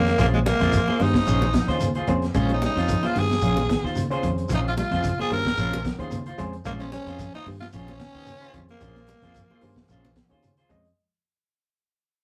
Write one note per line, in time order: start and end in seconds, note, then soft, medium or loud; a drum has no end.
0.00 0.13 F2 loud
0.00 0.17 A#3 medium
0.00 0.18 A#3 loud
0.00 0.42 C#4 medium
0.00 0.42 G#4 medium
0.00 0.42 C#5 medium
0.06 snare soft
0.06 closed hi-hat soft
0.18 0.51 A#1 loud
0.18 0.34 F3 loud
0.18 0.25 A#3 medium
0.18 0.27 A#3 loud
0.18 0.36 C#4 medium
0.18 0.36 F4 medium
0.18 0.36 G#4 medium
0.18 0.36 C5 medium
0.18 kick loud
0.18 closed hi-hat medium
0.18 low conga medium
0.18 shekere loud
0.34 0.39 G#3 medium
0.34 high conga medium
0.46 0.62 G3 medium
0.46 1.02 A#3 medium
0.46 1.04 A#3 loud
0.46 closed hi-hat medium
0.46 high conga loud
0.46 shekere soft
0.60 0.81 F2 medium
0.60 0.76 F4 soft
0.60 0.76 G#4 medium
0.60 0.76 C5 medium
0.60 kick medium
0.60 snare soft
0.60 closed hi-hat soft
0.72 0.88 F3 medium
0.72 kick medium
0.72 closed hi-hat medium
0.72 shekere loud
0.87 1.03 F4 soft
0.87 1.03 G#4 medium
0.87 1.03 C5 medium
0.87 high conga medium
0.99 1.21 G2 medium
0.99 1.16 D#3 medium
0.99 1.40 C#4 medium
0.99 1.81 D#4 medium
0.99 1.82 D#4 loud
0.99 1.40 G#4 medium
0.99 1.41 C5 medium
0.99 open hi-hat medium
0.99 high conga medium
0.99 shekere soft
1.14 kick medium
1.14 snare medium
1.27 1.59 A#1 loud
1.27 1.43 F3 medium
1.27 1.44 C#4 medium
1.27 1.44 G#4 medium
1.27 1.44 C5 medium
1.27 muted clean electric guitar stroke medium
1.27 snare soft
1.27 closed hi-hat medium
1.27 shekere loud
1.42 high conga loud
1.42 low conga medium
1.53 1.70 F3 medium
1.53 kick medium
1.53 snare medium
1.53 closed hi-hat medium
1.53 shekere soft
1.67 1.99 D#2 loud
1.67 1.91 C#4 medium
1.67 1.84 F4 soft
1.67 1.92 G#4 medium
1.67 1.84 G#4 medium
1.67 1.84 C5 medium
1.67 1.92 C5 loud
1.67 snare soft
1.67 closed hi-hat soft
1.80 1.96 C#3 medium
1.80 closed hi-hat medium
1.80 high conga medium
1.80 shekere medium
1.95 2.12 F4 soft
1.95 2.11 G#4 medium
1.95 2.11 C5 medium
1.95 closed hi-hat soft
2.07 2.29 F2 loud
2.07 2.24 A#3 medium
2.07 2.24 C#4 loud
2.07 2.25 G#4 medium
2.07 2.25 C5 loud
2.07 kick medium
2.07 closed hi-hat medium
2.07 shekere soft
2.22 snare soft
2.22 closed hi-hat soft
2.34 2.66 A#1 loud
2.34 2.51 G#3 medium
2.34 2.43 C#4 medium
2.34 2.52 C#4 medium
2.34 2.49 C#4 medium
2.34 2.52 F4 medium
2.34 2.43 G#4 medium
2.34 2.52 G#4 medium
2.34 2.43 C5 medium
2.34 2.52 C5 medium
2.34 kick loud
2.34 closed hi-hat medium
2.34 low conga medium
2.34 shekere medium
2.39 2.50 C#4 medium
2.49 3.12 C#4 medium
2.49 2.62 D#4 medium
2.49 3.12 G#4 medium
2.49 3.12 C#5 medium
2.49 closed hi-hat soft
2.49 high conga medium
2.54 2.63 D#4 medium
2.62 2.78 G3 medium
2.62 3.08 D#4 loud
2.62 3.05 D#4 medium
2.62 snare soft
2.62 closed hi-hat medium
2.62 high conga loud
2.62 shekere soft
2.76 2.97 F2 medium
2.76 2.92 F4 soft
2.76 2.91 G#4 soft
2.76 2.91 C5 soft
2.76 snare soft
2.76 closed hi-hat soft
2.88 3.05 F3 medium
2.88 kick medium
2.88 closed hi-hat medium
2.88 shekere loud
3.02 3.19 F4 soft
3.02 3.19 F4 medium
3.02 3.21 F4 loud
3.02 3.18 G#4 soft
3.02 3.18 C5 medium
3.02 snare soft
3.02 closed hi-hat soft
3.02 high conga medium
3.15 3.37 G2 medium
3.15 3.31 D#3 medium
3.15 3.85 G#4 medium
3.15 open hi-hat medium
3.15 high conga medium
3.15 shekere soft
3.19 3.85 G#4 loud
3.30 snare medium
3.30 low conga medium
3.41 3.74 A#1 loud
3.41 3.58 F3 loud
3.41 3.59 C#4 medium
3.41 3.59 F4 medium
3.41 3.59 G#4 medium
3.41 muted clean electric guitar stroke medium
3.41 closed hi-hat medium
3.41 shekere loud
3.57 snare soft
3.57 closed hi-hat soft
3.57 high conga medium
3.57 low conga medium
3.69 3.85 D#3 medium
3.69 kick medium
3.69 snare medium
3.69 closed hi-hat medium
3.69 shekere soft
3.84 4.14 D#2 loud
3.84 4.00 F4 medium
3.84 3.99 C5 medium
3.84 muted clean electric guitar stroke medium
3.84 snare soft
3.96 4.12 C#3 medium
3.96 closed hi-hat medium
3.96 high conga medium
3.96 shekere medium
4.10 4.73 C#4 loud
4.10 4.27 F4 medium
4.10 4.73 G#4 loud
4.10 4.27 G#4 soft
4.10 4.74 C5 loud
4.10 4.27 C5 medium
4.10 closed hi-hat soft
4.22 4.44 F2 loud
4.22 4.39 D#3 medium
4.22 kick medium
4.22 closed hi-hat medium
4.22 shekere soft
4.38 closed hi-hat soft
4.49 4.82 A#1 loud
4.49 4.65 F3 loud
4.49 4.68 C#4 medium
4.49 4.68 F4 medium
4.49 4.68 G#4 medium
4.49 4.68 C5 medium
4.49 kick loud
4.49 closed hi-hat medium
4.49 low conga medium
4.49 shekere loud
4.53 4.59 D#4 medium
4.53 4.60 D#4 loud
4.68 4.73 F4 medium
4.77 4.93 G3 medium
4.77 5.16 F4 medium
4.77 5.17 F4 medium
4.77 closed hi-hat medium
4.77 high conga loud
4.77 shekere soft
4.91 5.12 F2 medium
4.91 5.08 F4 medium
4.91 5.07 G#4 medium
4.91 5.07 C5 medium
4.91 kick medium
4.91 snare soft
4.91 closed hi-hat soft
5.03 5.19 C#3 medium
5.03 kick medium
5.03 closed hi-hat medium
5.03 shekere loud
5.19 5.35 F4 soft
5.19 5.34 G#4 medium
5.19 5.31 G#4 medium
5.19 5.31 G#4 loud
5.19 5.34 C5 medium
5.19 high conga medium
5.30 5.52 G2 medium
5.30 5.46 D#3 medium
5.30 5.71 C#4 medium
5.30 5.71 G#4 medium
5.30 5.72 A#4 medium
5.30 5.96 A#4 medium
5.30 5.96 A#4 loud
5.30 open hi-hat medium
5.30 high conga medium
5.30 shekere soft
5.45 kick medium
5.45 snare medium
5.45 low conga medium
5.57 5.90 A#1 loud
5.57 5.73 F3 loud
5.57 5.75 C#4 medium
5.57 5.75 F4 medium
5.57 5.75 G#4 medium
5.57 5.75 C5 medium
5.57 snare soft
5.57 closed hi-hat medium
5.57 shekere loud
5.73 high conga loud
5.73 low conga medium
5.85 6.01 F3 medium
5.85 kick medium
5.85 snare medium
5.85 closed hi-hat medium
5.85 shekere soft
5.98 6.29 D#2 loud
5.98 6.22 C#4 medium
5.98 6.15 F4 soft
5.98 6.22 G#4 medium
5.98 6.15 G#4 medium
5.98 6.23 C5 loud
5.98 6.15 C5 medium
5.98 closed hi-hat soft
6.11 6.27 C#3 medium
6.11 closed hi-hat medium
6.11 high conga medium
6.11 shekere medium
6.26 6.42 F4 medium
6.26 6.42 C5 medium
6.26 muted clean electric guitar stroke medium
6.26 closed hi-hat soft
6.38 6.59 F2 loud
6.38 6.55 G#3 medium
6.38 6.55 C#4 loud
6.38 6.55 G#4 loud
6.38 6.55 C5 loud
6.38 kick medium
6.38 closed hi-hat medium
6.38 shekere soft
6.53 closed hi-hat soft
6.65 6.97 A#1 loud
6.65 6.81 G#3 loud
6.65 6.72 A#3 loud
6.65 6.73 A#3 medium
6.65 6.74 C#4 medium
6.65 6.82 C#4 medium
6.65 6.83 F4 medium
6.65 6.74 G#4 medium
6.65 6.83 G#4 medium
6.65 6.74 C5 medium
6.65 6.83 C5 medium
6.65 kick loud
6.65 closed hi-hat medium
6.65 low conga medium
6.65 shekere loud
6.80 7.42 C#4 medium
6.80 6.91 C#4 medium
6.80 6.92 C#4 medium
6.80 7.43 G#4 medium
6.80 7.43 C5 loud
6.80 closed hi-hat soft
6.80 high conga medium
6.92 7.08 G3 medium
6.92 7.31 C#4 loud
6.92 7.32 C#4 medium
6.92 snare soft
6.92 closed hi-hat medium
6.92 high conga loud
6.92 shekere soft
7.06 7.27 F2 medium
7.06 7.23 F4 soft
7.06 7.23 G#4 medium
7.06 7.23 C5 medium
7.06 snare soft
7.06 closed hi-hat soft
7.19 7.36 F3 medium
7.19 kick medium
7.19 closed hi-hat medium
7.19 shekere loud
7.33 7.47 D#4 loud
7.33 7.47 D#4 medium
7.33 7.50 F4 soft
7.33 7.50 G#4 medium
7.33 7.49 C5 medium
7.33 snare soft
7.33 closed hi-hat soft
7.33 high conga medium
7.46 7.67 G2 medium
7.46 7.62 D#3 medium
7.46 open hi-hat medium
7.46 high conga medium
7.46 shekere soft
7.60 7.66 F4 loud
7.60 7.67 F4 loud
7.60 snare medium
7.60 low conga medium
7.72 8.06 A#1 loud
7.72 7.89 F3 loud
7.72 8.65 C#4 loud
7.72 7.90 C#4 medium
7.72 8.65 C#4 medium
7.72 7.91 F4 medium
7.72 7.91 G#4 medium
7.72 7.91 C5 medium
7.72 closed hi-hat medium
7.72 shekere loud
7.87 snare soft
7.87 closed hi-hat soft
7.87 high conga medium
7.87 low conga medium
7.99 8.16 D#3 medium
7.99 kick medium
7.99 snare medium
7.99 closed hi-hat medium
7.99 shekere soft
8.15 8.45 D#2 loud
8.15 8.30 G#4 soft
8.15 8.30 C5 soft
8.15 muted clean electric guitar stroke soft
8.26 8.42 C#3 medium
8.26 closed hi-hat medium
8.26 high conga medium
8.26 shekere medium
8.40 9.03 C#4 loud
8.40 8.58 F4 medium
8.40 9.04 G#4 loud
8.40 8.57 G#4 medium
8.40 9.04 C5 loud
8.40 8.57 C5 medium
8.40 closed hi-hat soft
8.53 8.75 F2 loud
8.53 8.70 D#3 medium
8.53 kick medium
8.53 closed hi-hat medium
8.53 shekere soft
8.68 10.40 A#3 medium
8.68 closed hi-hat soft
8.68 high conga medium
8.81 9.13 A#1 loud
8.81 8.97 F3 loud
8.81 8.98 C#4 medium
8.81 8.98 F4 medium
8.81 8.99 G#4 medium
8.81 8.99 C5 medium
8.81 kick loud
8.81 closed hi-hat medium
8.81 low conga medium
8.81 shekere loud
8.96 snare soft
8.96 high conga medium
9.07 9.24 G3 medium
9.07 closed hi-hat medium
9.07 high conga loud
9.07 shekere soft
9.22 9.43 F2 medium
9.22 9.39 F4 soft
9.22 9.38 G#4 medium
9.22 9.38 C5 medium
9.22 kick medium
9.22 snare soft
9.22 closed hi-hat soft
9.34 9.51 F3 medium
9.34 kick medium
9.34 closed hi-hat medium
9.34 shekere loud
9.51 9.66 F4 medium
9.51 9.66 G#4 medium
9.51 9.66 C5 medium
9.51 high conga medium
9.61 9.83 G2 medium
9.61 9.78 D#3 medium
9.61 10.02 C#4 medium
9.61 10.02 G#4 medium
9.61 10.03 C5 medium
9.61 open hi-hat medium
9.61 high conga medium
9.61 shekere soft
9.76 kick medium
9.76 snare medium
9.76 low conga medium
9.88 10.21 A#1 loud
9.88 10.05 F3 loud
9.88 10.06 C#4 medium
9.88 10.07 F4 medium
9.88 10.07 G#4 medium
9.88 10.07 C5 medium
9.88 snare soft
9.88 closed hi-hat medium
9.88 shekere loud
10.04 snare soft
10.04 high conga medium
10.04 low conga medium
10.16 10.32 F3 medium
10.16 kick medium
10.16 snare medium
10.16 closed hi-hat medium
10.16 shekere soft
10.30 10.61 D#2 loud
10.30 10.53 C#4 medium
10.30 10.47 F4 soft
10.30 10.54 G#4 medium
10.30 10.46 C5 soft
10.30 10.54 C#5 loud
10.30 muted clean electric guitar stroke medium
10.30 closed hi-hat soft
10.43 10.59 C#3 medium
10.43 closed hi-hat medium
10.43 high conga medium
10.43 shekere medium
10.57 10.74 F4 soft
10.57 10.73 G#4 soft
10.57 10.73 C5 medium
10.57 closed hi-hat soft
10.69 10.91 F2 medium
10.69 10.85 G#3 medium
10.69 10.86 C#4 loud
10.69 10.87 G#4 loud
10.69 10.87 D#5 loud
10.69 kick medium
10.69 closed hi-hat medium
10.69 shekere soft
10.85 closed hi-hat soft